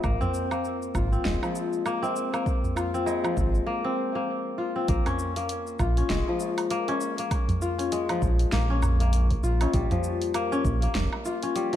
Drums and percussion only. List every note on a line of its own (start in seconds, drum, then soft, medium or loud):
0.04 kick loud
0.04 low woodblock medium
0.04 shaker soft
0.21 tabla ge medium
0.21 shaker soft
0.34 shaker medium
0.51 low woodblock medium
0.51 shaker soft
0.65 shaker soft
0.82 shaker soft
0.95 kick medium
0.95 tabla tin medium
0.95 low woodblock medium
0.95 shaker medium
1.13 shaker soft
1.25 kick medium
1.25 snare medium
1.25 tabla tin medium
1.25 shaker soft
1.43 tabla na soft
1.43 low woodblock medium
1.43 shaker soft
1.55 tabla tin medium
1.55 shaker medium
1.73 shaker soft
1.86 low woodblock medium
1.86 shaker soft
2.03 tabla tin medium
2.03 shaker soft
2.16 shaker medium
2.34 low woodblock medium
2.34 shaker soft
2.46 kick loud
2.46 shaker soft
2.64 tabla ge medium
2.64 shaker soft
2.77 low woodblock medium
2.77 shaker medium
2.94 shaker soft
3.06 tabla na medium
3.06 shaker soft
3.25 low woodblock medium
3.25 shaker soft
3.37 kick medium
3.37 tabla tin medium
3.37 shaker medium
3.55 shaker soft
4.88 kick loud
4.88 open hi-hat medium
4.88 shaker soft
5.06 open hi-hat soft
5.06 tabla ge medium
5.06 low woodblock medium
5.06 shaker soft
5.19 shaker medium
5.36 open hi-hat soft
5.36 shaker soft
5.49 open hi-hat medium
5.49 shaker soft
5.67 shaker soft
5.79 kick loud
5.79 tabla tin medium
5.79 low woodblock medium
5.79 shaker medium
5.97 open hi-hat soft
5.97 shaker soft
6.09 kick medium
6.09 snare medium
6.09 open hi-hat medium
6.09 tabla tin medium
6.09 shaker soft
6.27 tabla na soft
6.40 tabla tin medium
6.40 shaker medium
6.58 open hi-hat soft
6.58 low woodblock medium
6.58 shaker soft
6.70 open hi-hat medium
6.70 shaker soft
6.88 open hi-hat soft
6.88 tabla tin medium
7.01 shaker medium
7.18 open hi-hat soft
7.18 shaker soft
7.31 kick loud
7.31 open hi-hat medium
7.31 low woodblock medium
7.31 shaker soft
7.49 open hi-hat soft
7.49 tabla ge medium
7.49 shaker soft
7.62 shaker medium
7.79 open hi-hat soft
7.79 shaker soft
7.92 open hi-hat medium
7.92 shaker soft
8.09 open hi-hat soft
8.09 low woodblock medium
8.09 shaker soft
8.21 kick loud
8.21 tabla tin soft
8.21 shaker medium
8.39 open hi-hat soft
8.39 shaker soft
8.52 kick medium
8.52 snare medium
8.52 open hi-hat medium
8.52 shaker soft
8.83 tabla ge medium
8.83 low woodblock medium
8.83 shaker medium
9.00 open hi-hat soft
9.00 tabla tin medium
9.00 shaker soft
9.13 open hi-hat medium
9.13 shaker soft
9.31 kick medium
9.31 open hi-hat soft
9.44 shaker medium
9.61 open hi-hat soft
9.61 tabla na medium
9.61 low woodblock medium
9.61 shaker soft
9.74 kick loud
9.74 open hi-hat medium
9.74 shaker soft
9.91 open hi-hat soft
9.91 tabla ge medium
9.91 shaker soft
10.04 shaker medium
10.22 open hi-hat soft
10.22 shaker soft
10.34 open hi-hat medium
10.34 low woodblock medium
10.34 shaker soft
10.52 shaker soft
10.65 kick loud
10.65 tabla tin medium
10.65 shaker medium
10.82 open hi-hat soft
10.82 shaker soft
10.95 kick medium
10.95 snare medium
10.95 open hi-hat medium
10.95 tabla tin medium
10.95 shaker soft
11.13 tabla na soft
11.13 low woodblock medium
11.25 tabla tin medium
11.25 shaker medium
11.43 open hi-hat soft
11.43 shaker soft
11.56 open hi-hat medium
11.56 shaker soft
11.73 open hi-hat soft